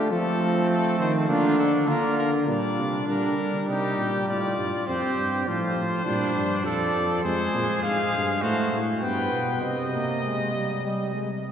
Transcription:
Already playing: A3 D4
0.10 F3 A3 C4 A4
0.70 A4
0.99 D#3 C5
1.29 D3 A#3 D4 F4
1.58 A4
1.87 D3 A#3 F4 A#4
2.18 A#4
2.48 A#2 G3 D4 D5
2.79 C3
3.08 D3 G3 A#4
3.38 D3
3.68 C3 D#4 G4
3.98 A#2
4.27 A2 F4 D5
4.58 G2
4.87 F2 C4 G4 C5
5.17 G2
5.46 A2 F3 F4 C5
5.77 A2
6.05 A#2 G3 D4
6.35 G2
6.65 F2 F3 A4 D5
7.24 F2 G#3 G#4 C5
7.55 A#2
7.83 G#2 F5
8.13 G2
8.42 A2 A3 F#4 C5
8.73 A2
9.01 G2 B3 B4 G5
9.32 B2
9.61 C3 C4 D#5
9.94 A#3
10.24 G#3
10.54 G3
10.84 G3
11.15 G#3
11.46 G3

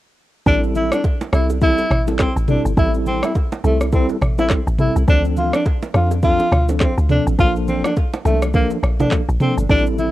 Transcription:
0.46 A1 G3 C4 D4 E4 A4, kick, low conga, shaker
0.63 shaker
0.75 E4, low conga, shaker
0.92 D4, cross-stick, low bongo, shaker
1.04 kick, high bongo, shaker
1.21 low bongo, shaker
1.33 C2 G3 C4 E4 A4, cross-stick, shaker
1.50 high bongo, shaker
1.61 G3 C4 E4 A4, kick, low conga, shaker
1.78 high bongo, shaker
1.91 A1, cross-stick, mid tom, shaker
2.07 G3 C4 E4 A4, low bongo, shaker
2.19 C4, kick, cross-stick, clap, high bongo, shaker
2.36 A1, shaker
2.48 G3 C4 D4 E4 A4, mid tom, shaker
2.65 G1, shaker
2.77 A1 G3 C4 E4 A4, kick, low conga, shaker
2.94 shaker
3.06 C4, low conga, shaker
3.23 E4, cross-stick, low bongo, shaker
3.35 kick, high bongo, shaker
3.52 low bongo, shaker
3.63 C2 G3 A3 C4 E4 A4, shaker
3.81 cross-stick, high bongo, shaker
3.92 G3 C4 E4 A4, kick, low conga, shaker
4.09 high bongo, shaker
4.21 A1, cross-stick, mid tom, shaker
4.38 G3 C4 E4 A4, low bongo, shaker
4.50 kick, cross-stick, clap, high bongo, shaker
4.67 A1, shaker
4.79 G3 C4 E4 A4, mid tom, shaker
4.96 C2, shaker
5.08 D2 F3 C4 D4 A4, kick, low conga, shaker
5.25 shaker
5.37 F4, low conga, shaker
5.53 D4, cross-stick, low bongo, shaker
5.65 kick, high bongo, shaker
5.83 low bongo, shaker
5.94 F2 F3 C4 D4 F4 A4, cross-stick, shaker
6.11 high bongo, shaker
6.23 F3 C4 D4 F4 A4, kick, low conga, shaker
6.39 high bongo, shaker
6.52 D2, cross-stick, mid tom, shaker
6.69 F3 C4 D4 A4, low bongo, shaker
6.80 C4, kick, cross-stick, clap, high bongo, shaker
6.98 D2, shaker
7.09 F3 C4 D4 A4, mid tom, shaker
7.27 A1, shaker
7.38 A#1 F3 A#3 D4 F4 A4, kick, low conga, shaker
7.56 shaker
7.67 C4, low conga, shaker
7.84 D4, cross-stick, low bongo, shaker
7.96 kick, high bongo, shaker
8.13 low bongo, shaker
8.25 C2 F3 A3 A#3 D4 A4, low bongo, shaker
8.42 cross-stick, high bongo, shaker
8.54 F3 A#3 D4 A4, kick, low conga, shaker
8.70 high bongo, shaker
8.83 A#1, cross-stick, shaker
8.99 F3 A#3 D4 A4, mid tom, low bongo, shaker
9.11 kick, cross-stick, clap, high bongo, shaker
9.29 A#1, shaker
9.40 F3 A#3 C4 D4 A4, mid tom, shaker
9.57 G1, shaker
9.69 A1 G3 C4 D4 E4 A4, kick, low conga, shaker
9.86 shaker
9.98 E4, low conga, shaker

